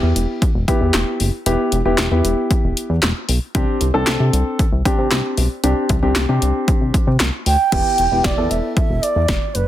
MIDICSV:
0, 0, Header, 1, 5, 480
1, 0, Start_track
1, 0, Key_signature, 1, "minor"
1, 0, Tempo, 521739
1, 1345, Time_signature, 4, 2, 24, 8
1, 8905, End_track
2, 0, Start_track
2, 0, Title_t, "Bansuri"
2, 0, Program_c, 0, 73
2, 6870, Note_on_c, 0, 79, 119
2, 7589, Note_on_c, 0, 74, 99
2, 7603, Note_off_c, 0, 79, 0
2, 7827, Note_on_c, 0, 76, 91
2, 7840, Note_off_c, 0, 74, 0
2, 8058, Note_off_c, 0, 76, 0
2, 8063, Note_on_c, 0, 76, 96
2, 8305, Note_on_c, 0, 74, 94
2, 8319, Note_off_c, 0, 76, 0
2, 8786, Note_on_c, 0, 71, 82
2, 8800, Note_off_c, 0, 74, 0
2, 8905, Note_off_c, 0, 71, 0
2, 8905, End_track
3, 0, Start_track
3, 0, Title_t, "Grand piano"
3, 0, Program_c, 1, 0
3, 0, Note_on_c, 1, 59, 84
3, 0, Note_on_c, 1, 64, 81
3, 0, Note_on_c, 1, 67, 95
3, 419, Note_off_c, 1, 59, 0
3, 419, Note_off_c, 1, 64, 0
3, 419, Note_off_c, 1, 67, 0
3, 624, Note_on_c, 1, 67, 99
3, 625, Note_on_c, 1, 59, 90
3, 625, Note_on_c, 1, 64, 81
3, 1168, Note_off_c, 1, 59, 0
3, 1168, Note_off_c, 1, 64, 0
3, 1168, Note_off_c, 1, 67, 0
3, 1346, Note_on_c, 1, 59, 92
3, 1347, Note_on_c, 1, 64, 82
3, 1347, Note_on_c, 1, 67, 105
3, 1617, Note_off_c, 1, 59, 0
3, 1617, Note_off_c, 1, 64, 0
3, 1617, Note_off_c, 1, 67, 0
3, 1706, Note_on_c, 1, 59, 89
3, 1706, Note_on_c, 1, 64, 81
3, 1706, Note_on_c, 1, 67, 99
3, 1886, Note_off_c, 1, 64, 0
3, 1887, Note_off_c, 1, 59, 0
3, 1887, Note_off_c, 1, 67, 0
3, 1946, Note_on_c, 1, 64, 79
3, 1946, Note_on_c, 1, 67, 95
3, 1947, Note_on_c, 1, 59, 90
3, 2670, Note_off_c, 1, 59, 0
3, 2670, Note_off_c, 1, 64, 0
3, 2670, Note_off_c, 1, 67, 0
3, 3265, Note_on_c, 1, 60, 92
3, 3265, Note_on_c, 1, 62, 83
3, 3266, Note_on_c, 1, 67, 103
3, 3537, Note_off_c, 1, 60, 0
3, 3537, Note_off_c, 1, 62, 0
3, 3537, Note_off_c, 1, 67, 0
3, 3624, Note_on_c, 1, 60, 88
3, 3624, Note_on_c, 1, 62, 82
3, 3624, Note_on_c, 1, 69, 102
3, 4258, Note_off_c, 1, 60, 0
3, 4258, Note_off_c, 1, 62, 0
3, 4258, Note_off_c, 1, 69, 0
3, 4465, Note_on_c, 1, 60, 91
3, 4465, Note_on_c, 1, 62, 85
3, 4465, Note_on_c, 1, 67, 100
3, 5008, Note_off_c, 1, 60, 0
3, 5008, Note_off_c, 1, 62, 0
3, 5008, Note_off_c, 1, 67, 0
3, 5185, Note_on_c, 1, 60, 91
3, 5185, Note_on_c, 1, 62, 86
3, 5185, Note_on_c, 1, 67, 102
3, 5456, Note_off_c, 1, 60, 0
3, 5457, Note_off_c, 1, 62, 0
3, 5457, Note_off_c, 1, 67, 0
3, 5544, Note_on_c, 1, 60, 90
3, 5544, Note_on_c, 1, 62, 81
3, 5544, Note_on_c, 1, 67, 97
3, 5726, Note_off_c, 1, 60, 0
3, 5726, Note_off_c, 1, 62, 0
3, 5726, Note_off_c, 1, 67, 0
3, 5785, Note_on_c, 1, 60, 90
3, 5785, Note_on_c, 1, 67, 98
3, 5786, Note_on_c, 1, 62, 79
3, 6509, Note_off_c, 1, 60, 0
3, 6509, Note_off_c, 1, 62, 0
3, 6509, Note_off_c, 1, 67, 0
3, 7105, Note_on_c, 1, 59, 74
3, 7105, Note_on_c, 1, 67, 82
3, 7106, Note_on_c, 1, 64, 67
3, 7377, Note_off_c, 1, 59, 0
3, 7377, Note_off_c, 1, 64, 0
3, 7377, Note_off_c, 1, 67, 0
3, 7466, Note_on_c, 1, 59, 68
3, 7466, Note_on_c, 1, 64, 67
3, 7466, Note_on_c, 1, 67, 78
3, 7646, Note_off_c, 1, 64, 0
3, 7647, Note_off_c, 1, 59, 0
3, 7647, Note_off_c, 1, 67, 0
3, 7705, Note_on_c, 1, 64, 66
3, 7706, Note_on_c, 1, 59, 72
3, 7706, Note_on_c, 1, 69, 78
3, 8429, Note_off_c, 1, 59, 0
3, 8429, Note_off_c, 1, 64, 0
3, 8429, Note_off_c, 1, 69, 0
3, 8905, End_track
4, 0, Start_track
4, 0, Title_t, "Analog synth bass"
4, 0, Program_c, 2, 38
4, 27, Note_on_c, 2, 40, 101
4, 121, Note_off_c, 2, 40, 0
4, 146, Note_on_c, 2, 28, 102
4, 240, Note_off_c, 2, 28, 0
4, 505, Note_on_c, 2, 28, 101
4, 600, Note_off_c, 2, 28, 0
4, 745, Note_on_c, 2, 40, 93
4, 840, Note_off_c, 2, 40, 0
4, 865, Note_on_c, 2, 28, 94
4, 959, Note_off_c, 2, 28, 0
4, 1105, Note_on_c, 2, 30, 103
4, 1199, Note_off_c, 2, 30, 0
4, 1345, Note_on_c, 2, 28, 111
4, 1440, Note_off_c, 2, 28, 0
4, 1586, Note_on_c, 2, 28, 107
4, 1680, Note_off_c, 2, 28, 0
4, 1705, Note_on_c, 2, 28, 92
4, 1800, Note_off_c, 2, 28, 0
4, 1824, Note_on_c, 2, 28, 106
4, 1919, Note_off_c, 2, 28, 0
4, 1944, Note_on_c, 2, 40, 110
4, 2039, Note_off_c, 2, 40, 0
4, 2064, Note_on_c, 2, 28, 105
4, 2159, Note_off_c, 2, 28, 0
4, 2424, Note_on_c, 2, 28, 98
4, 2519, Note_off_c, 2, 28, 0
4, 2665, Note_on_c, 2, 40, 103
4, 2760, Note_off_c, 2, 40, 0
4, 2784, Note_on_c, 2, 28, 111
4, 2879, Note_off_c, 2, 28, 0
4, 3025, Note_on_c, 2, 35, 98
4, 3120, Note_off_c, 2, 35, 0
4, 3265, Note_on_c, 2, 36, 108
4, 3360, Note_off_c, 2, 36, 0
4, 3504, Note_on_c, 2, 36, 107
4, 3599, Note_off_c, 2, 36, 0
4, 3624, Note_on_c, 2, 36, 101
4, 3719, Note_off_c, 2, 36, 0
4, 3744, Note_on_c, 2, 36, 103
4, 3839, Note_off_c, 2, 36, 0
4, 3864, Note_on_c, 2, 48, 103
4, 3959, Note_off_c, 2, 48, 0
4, 3985, Note_on_c, 2, 36, 98
4, 4080, Note_off_c, 2, 36, 0
4, 4345, Note_on_c, 2, 36, 101
4, 4440, Note_off_c, 2, 36, 0
4, 4584, Note_on_c, 2, 48, 101
4, 4679, Note_off_c, 2, 48, 0
4, 4706, Note_on_c, 2, 36, 104
4, 4800, Note_off_c, 2, 36, 0
4, 4946, Note_on_c, 2, 35, 100
4, 5041, Note_off_c, 2, 35, 0
4, 5187, Note_on_c, 2, 36, 113
4, 5281, Note_off_c, 2, 36, 0
4, 5425, Note_on_c, 2, 36, 102
4, 5519, Note_off_c, 2, 36, 0
4, 5547, Note_on_c, 2, 36, 87
4, 5641, Note_off_c, 2, 36, 0
4, 5666, Note_on_c, 2, 36, 104
4, 5760, Note_off_c, 2, 36, 0
4, 5787, Note_on_c, 2, 48, 103
4, 5881, Note_off_c, 2, 48, 0
4, 5908, Note_on_c, 2, 36, 106
4, 6001, Note_off_c, 2, 36, 0
4, 6267, Note_on_c, 2, 36, 96
4, 6361, Note_off_c, 2, 36, 0
4, 6506, Note_on_c, 2, 48, 102
4, 6600, Note_off_c, 2, 48, 0
4, 6627, Note_on_c, 2, 36, 100
4, 6721, Note_off_c, 2, 36, 0
4, 6867, Note_on_c, 2, 38, 97
4, 6961, Note_off_c, 2, 38, 0
4, 7106, Note_on_c, 2, 28, 113
4, 7201, Note_off_c, 2, 28, 0
4, 7344, Note_on_c, 2, 28, 95
4, 7439, Note_off_c, 2, 28, 0
4, 7465, Note_on_c, 2, 28, 108
4, 7560, Note_off_c, 2, 28, 0
4, 7589, Note_on_c, 2, 28, 107
4, 7682, Note_off_c, 2, 28, 0
4, 7706, Note_on_c, 2, 40, 97
4, 7800, Note_off_c, 2, 40, 0
4, 7826, Note_on_c, 2, 28, 99
4, 7920, Note_off_c, 2, 28, 0
4, 8186, Note_on_c, 2, 28, 99
4, 8280, Note_off_c, 2, 28, 0
4, 8427, Note_on_c, 2, 40, 95
4, 8521, Note_off_c, 2, 40, 0
4, 8545, Note_on_c, 2, 28, 96
4, 8639, Note_off_c, 2, 28, 0
4, 8787, Note_on_c, 2, 30, 102
4, 8881, Note_off_c, 2, 30, 0
4, 8905, End_track
5, 0, Start_track
5, 0, Title_t, "Drums"
5, 147, Note_on_c, 9, 42, 70
5, 239, Note_off_c, 9, 42, 0
5, 386, Note_on_c, 9, 36, 94
5, 386, Note_on_c, 9, 42, 66
5, 478, Note_off_c, 9, 36, 0
5, 478, Note_off_c, 9, 42, 0
5, 626, Note_on_c, 9, 36, 103
5, 628, Note_on_c, 9, 42, 79
5, 718, Note_off_c, 9, 36, 0
5, 720, Note_off_c, 9, 42, 0
5, 863, Note_on_c, 9, 42, 76
5, 864, Note_on_c, 9, 38, 120
5, 864, Note_on_c, 9, 39, 99
5, 955, Note_off_c, 9, 42, 0
5, 956, Note_off_c, 9, 38, 0
5, 956, Note_off_c, 9, 39, 0
5, 1104, Note_on_c, 9, 46, 73
5, 1196, Note_off_c, 9, 46, 0
5, 1345, Note_on_c, 9, 42, 91
5, 1437, Note_off_c, 9, 42, 0
5, 1583, Note_on_c, 9, 42, 74
5, 1675, Note_off_c, 9, 42, 0
5, 1822, Note_on_c, 9, 38, 112
5, 1822, Note_on_c, 9, 39, 94
5, 1825, Note_on_c, 9, 42, 79
5, 1914, Note_off_c, 9, 38, 0
5, 1914, Note_off_c, 9, 39, 0
5, 1917, Note_off_c, 9, 42, 0
5, 2067, Note_on_c, 9, 42, 72
5, 2159, Note_off_c, 9, 42, 0
5, 2306, Note_on_c, 9, 36, 92
5, 2306, Note_on_c, 9, 42, 66
5, 2398, Note_off_c, 9, 36, 0
5, 2398, Note_off_c, 9, 42, 0
5, 2549, Note_on_c, 9, 42, 78
5, 2641, Note_off_c, 9, 42, 0
5, 2782, Note_on_c, 9, 42, 78
5, 2784, Note_on_c, 9, 38, 119
5, 2784, Note_on_c, 9, 39, 95
5, 2874, Note_off_c, 9, 42, 0
5, 2876, Note_off_c, 9, 38, 0
5, 2876, Note_off_c, 9, 39, 0
5, 3023, Note_on_c, 9, 46, 75
5, 3115, Note_off_c, 9, 46, 0
5, 3264, Note_on_c, 9, 42, 86
5, 3265, Note_on_c, 9, 36, 115
5, 3356, Note_off_c, 9, 42, 0
5, 3357, Note_off_c, 9, 36, 0
5, 3503, Note_on_c, 9, 42, 71
5, 3595, Note_off_c, 9, 42, 0
5, 3743, Note_on_c, 9, 38, 119
5, 3743, Note_on_c, 9, 39, 97
5, 3746, Note_on_c, 9, 42, 81
5, 3835, Note_off_c, 9, 38, 0
5, 3835, Note_off_c, 9, 39, 0
5, 3838, Note_off_c, 9, 42, 0
5, 3988, Note_on_c, 9, 42, 73
5, 4080, Note_off_c, 9, 42, 0
5, 4226, Note_on_c, 9, 36, 95
5, 4226, Note_on_c, 9, 42, 67
5, 4318, Note_off_c, 9, 36, 0
5, 4318, Note_off_c, 9, 42, 0
5, 4466, Note_on_c, 9, 36, 105
5, 4469, Note_on_c, 9, 42, 78
5, 4558, Note_off_c, 9, 36, 0
5, 4561, Note_off_c, 9, 42, 0
5, 4703, Note_on_c, 9, 42, 78
5, 4705, Note_on_c, 9, 38, 119
5, 4705, Note_on_c, 9, 39, 95
5, 4795, Note_off_c, 9, 42, 0
5, 4797, Note_off_c, 9, 38, 0
5, 4797, Note_off_c, 9, 39, 0
5, 4945, Note_on_c, 9, 46, 78
5, 5037, Note_off_c, 9, 46, 0
5, 5185, Note_on_c, 9, 42, 92
5, 5277, Note_off_c, 9, 42, 0
5, 5422, Note_on_c, 9, 42, 71
5, 5425, Note_on_c, 9, 36, 98
5, 5514, Note_off_c, 9, 42, 0
5, 5517, Note_off_c, 9, 36, 0
5, 5664, Note_on_c, 9, 38, 118
5, 5664, Note_on_c, 9, 39, 96
5, 5667, Note_on_c, 9, 42, 79
5, 5756, Note_off_c, 9, 38, 0
5, 5756, Note_off_c, 9, 39, 0
5, 5759, Note_off_c, 9, 42, 0
5, 5907, Note_on_c, 9, 42, 71
5, 5999, Note_off_c, 9, 42, 0
5, 6145, Note_on_c, 9, 42, 65
5, 6146, Note_on_c, 9, 36, 97
5, 6237, Note_off_c, 9, 42, 0
5, 6238, Note_off_c, 9, 36, 0
5, 6386, Note_on_c, 9, 36, 99
5, 6388, Note_on_c, 9, 42, 79
5, 6478, Note_off_c, 9, 36, 0
5, 6480, Note_off_c, 9, 42, 0
5, 6622, Note_on_c, 9, 42, 76
5, 6624, Note_on_c, 9, 38, 122
5, 6624, Note_on_c, 9, 39, 94
5, 6714, Note_off_c, 9, 42, 0
5, 6716, Note_off_c, 9, 38, 0
5, 6716, Note_off_c, 9, 39, 0
5, 6865, Note_on_c, 9, 46, 74
5, 6957, Note_off_c, 9, 46, 0
5, 7105, Note_on_c, 9, 42, 83
5, 7105, Note_on_c, 9, 49, 89
5, 7106, Note_on_c, 9, 36, 113
5, 7197, Note_off_c, 9, 42, 0
5, 7197, Note_off_c, 9, 49, 0
5, 7198, Note_off_c, 9, 36, 0
5, 7343, Note_on_c, 9, 42, 68
5, 7435, Note_off_c, 9, 42, 0
5, 7584, Note_on_c, 9, 38, 112
5, 7587, Note_on_c, 9, 42, 75
5, 7588, Note_on_c, 9, 36, 114
5, 7676, Note_off_c, 9, 38, 0
5, 7679, Note_off_c, 9, 42, 0
5, 7680, Note_off_c, 9, 36, 0
5, 7828, Note_on_c, 9, 42, 70
5, 7920, Note_off_c, 9, 42, 0
5, 8065, Note_on_c, 9, 42, 60
5, 8066, Note_on_c, 9, 36, 116
5, 8157, Note_off_c, 9, 42, 0
5, 8158, Note_off_c, 9, 36, 0
5, 8308, Note_on_c, 9, 42, 73
5, 8400, Note_off_c, 9, 42, 0
5, 8542, Note_on_c, 9, 42, 73
5, 8544, Note_on_c, 9, 38, 111
5, 8545, Note_on_c, 9, 36, 120
5, 8634, Note_off_c, 9, 42, 0
5, 8636, Note_off_c, 9, 38, 0
5, 8637, Note_off_c, 9, 36, 0
5, 8785, Note_on_c, 9, 42, 70
5, 8877, Note_off_c, 9, 42, 0
5, 8905, End_track
0, 0, End_of_file